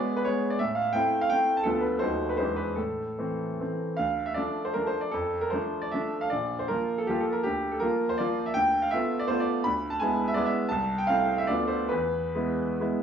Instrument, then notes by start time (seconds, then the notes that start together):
grand piano
Already playing: G#3 B3 G#4 D5
0.16 B4
0.24 G#3 B3 G#4 C#5
0.50 D5
0.59 A2 E5
0.75 F5
0.93 A3 C4 E4 G5
1.21 F5
1.30 A3 C4 E4 G5
1.57 A5
1.63 D2 F3 B3 F4 A4
1.81 B4
1.99 D#2 F#3 A3 D#4 C5
2.29 B4
2.37 E2 E3 G#3 D4 C5
2.56 B4
2.76 A2 A4
3.19 E3 A3 C4
3.60 E3 A3 C4
3.97 D2 F5
4.26 E5
4.34 F3 A3 D4 D5
4.65 C5
4.74 F3 A3 D4 A#4
4.87 C5
5.01 D5
5.12 F2 A4
5.41 A#4
5.50 F3 A3 D4 C5
5.82 D5
5.91 F3 A3 D4 E5
6.21 F5
6.30 A#1 D5
6.59 C5
6.68 F3 A#3 F4 A#4
6.98 A4
7.07 F3 A#3 F4 G4
7.20 A4
7.32 A#4
7.43 D2 G4
7.71 A4
7.80 F3 A#3 F4 A#4
8.09 C5
8.18 F3 A#3 F4 D5
8.46 E5
8.54 D2 G5
8.82 F5
8.91 A3 B3 F4 E5
9.19 D5
9.28 A3 B3 F4 C5
9.40 D5
9.64 D2 B5
9.90 A5
9.99 G#3 B3 E4 G#5
10.28 E5
10.34 G#3 B3 E4 D5
10.46 E5
10.69 C2 A5
10.98 G5
11.07 A3 C4 E4 F5
11.38 E5
11.47 D2 A3 B3 F4 D5
11.68 C5
11.89 E2 B4
12.35 G#3 B3 E4
12.80 G#3 B3 E4